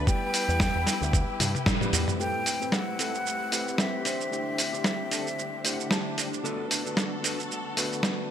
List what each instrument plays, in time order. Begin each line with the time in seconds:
Already playing: string section B4
0.06 tine electric piano G3 B3 E4 G4 B4, string section E4 G4, flute G5, kick, shaker
0.34 open hi-hat, shaker
0.48 picked electric bass E2, shaker
0.60 kick, snare, shaker
0.75 picked electric bass E2
0.86 snare, open hi-hat, shaker
1.01 picked electric bass D2, shaker
1.13 kick, shaker
1.28 muted picked electric bass stroke
1.40 picked electric bass G2, open hi-hat, high tom, shaker
1.55 high tom, shaker
1.66 kick, snare, mid tom, shaker
1.81 tine electric piano G3 B3 E4 G4 B4, mid tom, shaker
1.93 picked electric bass E2, open hi-hat, shaker
2.08 mid tom, shaker
2.19 tine electric piano A3 C4 E4 G4 B4, string section A3 C4 E4 G4, clean electric guitar C4 G4 A4, flute G5, shaker
2.46 open hi-hat, shaker
2.60 clean electric guitar C4 G4 B4, shaker
2.72 flute F#5, snare, shaker
2.87 muted clean electric guitar stroke
2.99 clean electric guitar C4 G4 A4, open hi-hat, shaker
3.15 shaker
3.25 muted clean electric guitar stroke, shaker
3.52 tine electric piano A3 C4 E4 G4 B4, open hi-hat, shaker
3.68 shaker
3.78 flute E5, muted clean electric guitar stroke, snare, shaker
3.93 muted clean electric guitar stroke
4.05 string section D3 D4, clean electric guitar D4 G4 C5, open hi-hat, shaker
4.21 shaker
4.31 tine electric piano A3 D4 E4 G4 C5, shaker
4.58 open hi-hat, shaker
4.72 clean electric guitar D4 G4 C5, shaker
4.84 snare, shaker
4.99 muted clean electric guitar stroke
5.11 clean electric guitar D4 G4 A4, open hi-hat, shaker
5.27 shaker
5.37 muted clean electric guitar stroke, shaker
5.64 tine electric piano A3 D4 E4 G4 C5, clean electric guitar E5, open hi-hat, shaker
5.73 clean electric guitar F#5
5.80 shaker
5.91 clean electric guitar A5, muted clean electric guitar stroke, snare, shaker
6.05 muted clean electric guitar stroke
6.18 open hi-hat, shaker
6.33 shaker
6.43 tine electric piano D3 A3 B3 D4 F#4 B4, clean electric guitar D4 A4 B4, string section F#4 A4, shaker
6.71 open hi-hat, shaker
6.85 clean electric guitar D4 A4 B4, shaker
6.97 snare, shaker
7.11 muted clean electric guitar stroke
7.23 clean electric guitar D4 A4 B4, open hi-hat, shaker
7.40 shaker
7.50 muted clean electric guitar stroke, shaker
7.77 tine electric piano D3 A3 B3 D4 F#4 B4, open hi-hat, shaker
7.93 shaker
8.03 muted clean electric guitar stroke, snare, shaker
8.18 muted clean electric guitar stroke